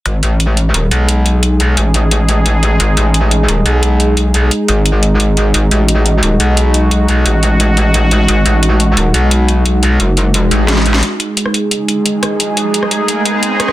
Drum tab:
HH |x-x-x-x-x-x-x-x-|x-x-x-x-x-x-x-x-|x-x-x-x-x-x-x-x-|x-x-x-x-x-x-x-x-|
SD |----------------|----------------|----------------|----------------|

HH |x-x-x-x-x-x-x-x-|x-x-x-x-x-x-x-x-|x-x-x-x-x-x-x-x-|x-x-x-x-x-x-x-x-|
SD |----------------|----------------|----------------|------------oo-o|

HH |x-x-x-x-x-x-x-x-|x-x-x-x-x-x-x-x-|
SD |-----r--------r-|-----r--------rr|